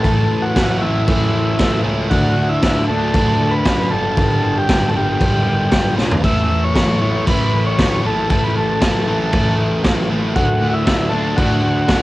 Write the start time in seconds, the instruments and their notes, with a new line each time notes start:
Already playing: transistor combo organ A4
0.04 picked electric bass A1, distorted electric guitar A2 E3 A3, kick, crash
0.29 picked electric bass A1
0.42 transistor combo organ F#4
0.55 picked electric bass A1, distorted electric guitar A2 E3 A3, kick, snare, crash
0.81 picked electric bass A1, distorted electric guitar A2 E3 A3, transistor combo organ E4
1.07 picked electric bass A1, distorted electric guitar A2 E3 A3, kick, crash
1.33 picked electric bass A1
1.59 picked electric bass A1, distorted electric guitar A2 E3 A3, kick, snare, crash
1.84 picked electric bass C#2, distorted electric guitar A2 E3 A3
2.10 picked electric bass D2, distorted electric guitar D3 A3 D4, transistor combo organ F#4, kick, crash
2.37 picked electric bass D2
2.49 transistor combo organ E4
2.63 picked electric bass D2, distorted electric guitar D3 A3 D4, kick, snare, crash
2.88 picked electric bass D2, distorted electric guitar D3 A3 D4, transistor combo organ A4
3.14 picked electric bass D2, distorted electric guitar D3 A3 D4, kick, crash
3.40 picked electric bass D2
3.51 transistor combo organ B4
3.65 picked electric bass F#2, distorted electric guitar D3 A3 D4, kick, snare, crash
3.91 picked electric bass G1, distorted electric guitar G2 D3 G3, transistor combo organ A4
4.17 picked electric bass G1, distorted electric guitar G2 D3 G3, kick, crash
4.43 picked electric bass G1
4.58 transistor combo organ G4
4.67 picked electric bass G1, distorted electric guitar G2 D3 G3, kick, snare, crash
4.88 transistor combo organ A4
4.94 picked electric bass G1, distorted electric guitar G2 D3 G3, transistor combo organ G4
5.19 picked electric bass G1, distorted electric guitar G2 D3 G3, kick, crash
5.47 picked electric bass G1
5.70 picked electric bass G1, distorted electric guitar G2 D3 G3, kick, snare, crash
5.96 picked electric bass B1, distorted electric guitar G2 D3 G3, snare
6.11 floor tom
6.22 picked electric bass A1, distorted electric guitar A2 E3 A3, transistor combo organ E5, kick, crash
6.51 picked electric bass A1
6.64 transistor combo organ C#5
6.75 picked electric bass A1, distorted electric guitar A2 E3 A3, kick, snare, crash
7.00 picked electric bass A1, distorted electric guitar A2 E3 A3, transistor combo organ C#5
7.27 picked electric bass A1, distorted electric guitar A2 E3 A3, transistor combo organ B4, kick, crash
7.54 picked electric bass A1
7.67 transistor combo organ C#5
7.78 picked electric bass D2, distorted electric guitar A2 E3 A3, kick, snare, crash
8.04 picked electric bass A1, distorted electric guitar A2 E3 A3, transistor combo organ A4
8.30 picked electric bass A1, distorted electric guitar A2 E3 A3, transistor combo organ A4, kick, crash
8.44 transistor combo organ B4
8.55 picked electric bass A1, transistor combo organ A4
8.81 picked electric bass A1, distorted electric guitar A2 E3 A3, kick, snare, crash
9.07 picked electric bass A1, distorted electric guitar A2 E3 A3
9.32 picked electric bass A1, distorted electric guitar A2 E3 A3, kick, crash
9.58 picked electric bass A1
9.83 picked electric bass A1, distorted electric guitar A2 E3 A3, kick, snare, crash
10.09 picked electric bass A1, distorted electric guitar A2 E3 A3
10.35 picked electric bass D2, distorted electric guitar D3 A3 D4, transistor combo organ F#4, kick, crash
10.61 picked electric bass D2
10.69 transistor combo organ E4 F#4
10.86 picked electric bass D2, distorted electric guitar D3 A3 D4, kick, snare, crash
11.09 picked electric bass D2, distorted electric guitar D3 A3 D4, transistor combo organ A4
11.36 picked electric bass D2, distorted electric guitar D3 A3 D4, transistor combo organ F#4, kick, crash
11.63 picked electric bass D2
11.88 picked electric bass F#2, distorted electric guitar D3 A3 D4, kick, snare, crash